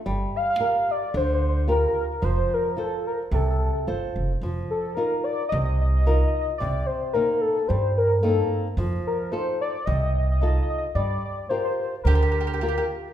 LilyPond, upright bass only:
\new Staff \with { instrumentName = "Upright bass" } { \clef bass \time 4/4 \key f \mixolydian \tempo 4 = 110 g,,8 r4. d,2 | f,,8 r4. c,4 g,,8 f,,8 | f,,8 r4. c,2 | c,8 r4. g,2 |
f,8 r4. c,2 | g,8 r4. d,2 | }